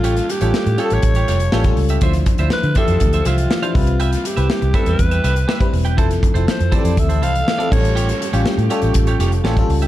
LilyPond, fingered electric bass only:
\new Staff \with { instrumentName = "Fingered electric bass" } { \clef bass \time 4/4 \key c \major \tempo 4 = 121 a,,8 r16 a,,16 r16 a,16 r16 a,,16 a,,8 f,,8 a,,8 cis,8 | d,8 r16 d,16 r16 d16 r16 f,16 d,8 c,8 r8 c,8~ | c,8 r16 c,16 r16 c,16 r16 e,16 e,8 c,8 r8 e,,8 | f,,8 r16 f,,16 r16 f,16 r16 f,16 d,8 c,8 r8 a,,8~ |
a,,8 r16 a,,16 r16 a,16 r16 a,,16 a,,8 f,,8 a,,8 cis,8 | }